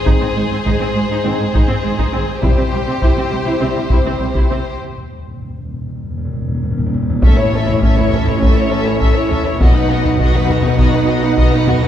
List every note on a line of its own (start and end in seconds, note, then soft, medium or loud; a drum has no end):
0.00 2.38 G#4 medium
0.00 2.39 C5 medium
0.05 0.13 G#1 medium
0.05 0.11 G#2 medium
0.05 0.26 C4 medium
0.05 0.27 D#4 medium
0.05 0.12 D#4 medium
0.05 taiko medium
0.20 0.26 G#2 medium
0.20 0.27 C4 medium
0.35 0.42 G#1 medium
0.35 0.41 G#2 medium
0.35 0.42 G#3 soft
0.50 0.56 G#2 medium
0.50 0.58 C4 medium
0.65 0.71 G#1 medium
0.65 0.71 G#2 medium
0.65 0.72 D#4 medium
0.65 taiko medium
0.79 0.85 G#2 medium
0.79 0.86 C4 medium
0.95 1.01 G#1 medium
0.95 1.01 G#2 medium
0.95 1.01 G#3 medium
1.09 1.15 G#2 medium
1.09 1.17 D#4 medium
1.24 1.31 G#1 medium
1.24 1.30 G#2 soft
1.24 1.45 C4 medium
1.24 1.31 C4 soft
1.24 1.45 D#4 medium
1.39 1.45 G#2 medium
1.39 1.46 G#3 medium
1.54 1.60 G#1 medium
1.54 1.60 G#2 medium
1.54 1.60 D#4 medium
1.54 taiko medium
1.68 1.75 G#2 medium
1.68 1.74 C4 medium
1.83 1.90 G#1 medium
1.83 1.89 G#2 medium
1.83 1.89 G#3 medium
1.98 2.04 G#2 medium
1.98 2.04 D#4 medium
1.98 taiko medium
2.12 2.20 G#1 soft
2.12 2.19 G#2 medium
2.12 2.18 C4 medium
2.42 2.49 C2 medium
2.42 2.49 C3 medium
2.42 2.62 G3 medium
2.42 2.62 E4 medium
2.42 2.48 E4 medium
2.42 4.77 G4 medium
2.42 4.76 C5 medium
2.42 taiko medium
2.57 2.63 C3 medium
2.57 2.63 C4 soft
2.72 2.79 C2 medium
2.72 2.79 C3 soft
2.72 2.78 G3 medium
2.87 2.93 C3 soft
2.87 2.93 C4 medium
3.02 3.08 C2 medium
3.02 3.07 C3 medium
3.02 3.08 E4 medium
3.02 taiko medium
3.16 3.22 C3 medium
3.16 3.23 C4 soft
3.31 3.37 C2 soft
3.31 3.37 C3 medium
3.31 3.37 G3 medium
3.45 3.51 C3 medium
3.45 3.51 E4 medium
3.61 3.67 C2 soft
3.61 3.66 C3 soft
3.61 3.81 G3 medium
3.61 3.67 C4 medium
3.61 3.82 E4 medium
3.75 3.81 C3 soft
3.75 3.82 G3 medium
3.90 3.97 C2 medium
3.90 3.96 C3 medium
3.90 3.97 E4 medium
3.90 taiko medium
4.05 4.11 C3 soft
4.05 4.11 C4 medium
4.19 4.26 C2 medium
4.19 4.25 C3 soft
4.19 4.27 G3 soft
4.34 4.40 C3 medium
4.34 4.42 E4 medium
4.34 taiko medium
4.51 4.56 C2 soft
4.51 4.57 C3 soft
4.51 4.57 C4 soft
4.81 4.88 E2 soft
4.89 4.96 E2 soft
4.97 5.03 E2 soft
5.05 5.11 E2 soft
5.12 5.18 E2 soft
5.19 5.26 E2 soft
5.28 5.32 E2 soft
5.33 5.40 E2 soft
5.42 5.48 E2 soft
5.50 5.56 E2 soft
5.57 5.64 E2 soft
5.65 5.72 E2 soft
5.73 5.79 E2 soft
5.80 5.86 E2 soft
5.87 5.94 E2 soft
5.95 6.02 E2 soft
6.03 6.09 E2 soft
6.11 6.16 E2 soft
6.18 6.24 E2 medium
6.25 6.32 E2 medium
6.33 6.40 E2 medium
6.41 6.47 E2 medium
6.48 6.53 E2 medium
6.55 6.62 E2 medium
6.63 6.70 E2 medium
6.71 6.77 E2 medium
6.78 6.85 E2 medium
6.86 6.93 E2 medium
6.94 7.01 E2 medium
7.02 7.09 E2 medium
7.10 7.17 E2 medium
7.22 9.57 A1 medium
7.22 9.56 A2 medium
7.22 9.57 A3 medium
7.22 9.56 C#4 medium
7.22 7.36 C#4 medium
7.22 7.37 A4 medium
7.22 7.37 E5 medium
7.22 taiko medium
7.37 7.52 E4 medium
7.37 7.53 C#5 medium
7.37 7.53 C#5 soft
7.52 7.67 C#4 medium
7.52 7.68 A4 medium
7.52 7.69 E5 medium
7.67 7.82 E4 medium
7.67 7.83 C#5 soft
7.67 taiko low medium
7.82 7.96 C#4 medium
7.82 7.97 A4 medium
7.82 7.97 E5 medium
7.82 taiko medium
7.98 8.12 E4 medium
7.98 8.13 C#5 medium
7.98 taiko low soft
8.11 8.27 C#4 medium
8.11 8.28 A4 medium
8.11 8.27 E5 medium
8.11 taiko low medium
8.26 8.41 E4 medium
8.26 8.42 C#5 medium
8.26 8.42 C#5 soft
8.26 taiko low medium
8.39 8.54 C#4 medium
8.39 taiko medium
8.44 8.58 A4 medium
8.44 8.57 E5 medium
8.54 8.70 E4 medium
8.54 8.72 C#5 medium
8.59 8.72 C#5 medium
8.69 8.85 C#4 medium
8.69 8.86 A4 soft
8.69 8.86 E5 medium
8.84 9.00 E4 medium
8.84 9.01 C#5 medium
9.00 9.14 C#4 medium
9.00 9.15 A4 medium
9.00 9.15 E5 medium
9.00 taiko medium
9.14 9.30 E4 medium
9.14 9.31 C#5 medium
9.29 9.45 C#4 medium
9.29 9.46 A4 medium
9.29 9.46 E5 medium
9.29 taiko low medium
9.44 9.60 E4 medium
9.44 9.60 C#5 medium
9.59 11.88 B1 medium
9.59 11.88 B2 medium
9.59 9.73 B3 medium
9.59 11.88 B3 medium
9.59 11.88 D#4 medium
9.59 9.74 F#4 medium
9.59 9.75 D#5 medium
9.59 taiko loud
9.74 9.89 D#4 medium
9.74 9.90 B4 medium
9.74 9.90 F#5 medium
9.89 10.05 B3 medium
9.89 10.04 F#4 medium
9.89 10.05 D#5 medium
10.03 10.19 D#4 medium
10.03 10.19 B4 soft
10.03 10.20 F#5 medium
10.03 taiko low medium
10.19 10.33 B3 medium
10.19 10.33 F#4 medium
10.19 10.34 D#5 medium
10.19 taiko medium
10.33 10.49 D#4 medium
10.33 10.50 B4 medium
10.33 10.50 F#5 medium
10.33 taiko low medium
10.48 10.63 B3 medium
10.48 10.65 F#4 medium
10.48 10.65 D#5 medium
10.48 taiko low medium
10.63 10.78 D#4 medium
10.63 10.80 B4 medium
10.63 10.79 F#5 medium
10.63 taiko low medium
10.78 10.92 B3 medium
10.78 10.93 F#4 medium
10.78 10.93 D#5 medium
10.78 taiko medium
10.93 11.08 D#4 medium
10.93 11.09 B4 medium
10.93 11.08 F#5 medium
11.08 11.23 B3 medium
11.08 11.23 F#4 medium
11.08 11.23 D#5 medium
11.23 11.38 D#4 medium
11.23 11.38 B4 medium
11.23 11.39 F#5 medium
11.38 11.52 B3 medium
11.38 11.52 F#4 medium
11.38 11.52 D#5 medium
11.38 taiko medium
11.53 11.68 D#4 medium
11.53 11.68 B4 medium
11.53 11.68 F#5 medium
11.67 11.83 B3 medium
11.67 11.83 F#4 medium
11.67 11.83 D#5 medium
11.67 taiko low medium
11.82 11.88 D#4 medium
11.82 11.88 B4 medium
11.82 11.88 F#5 medium